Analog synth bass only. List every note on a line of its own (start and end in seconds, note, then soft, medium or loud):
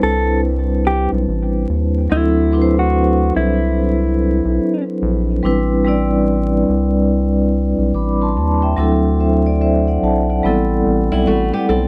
0.02 1.08 C2 medium
1.12 1.26 B1 medium
1.28 1.66 A1 loud
1.69 2.08 D#2 loud
2.11 3.32 D2 loud
3.36 4.41 C2 loud
4.45 4.59 B1 medium
5.02 5.41 A#1 loud
5.44 6.65 A1 loud
6.69 7.74 C2 medium
7.78 7.93 B1 loud
7.94 8.37 A1 medium
8.36 8.75 D#2 medium
8.77 9.98 D2 loud
10.02 10.41 B1 medium
10.44 10.83 A1 medium
10.86 11.10 A1 loud
11.12 11.26 B1 medium
11.27 11.52 A1 medium
11.69 11.88 B1 loud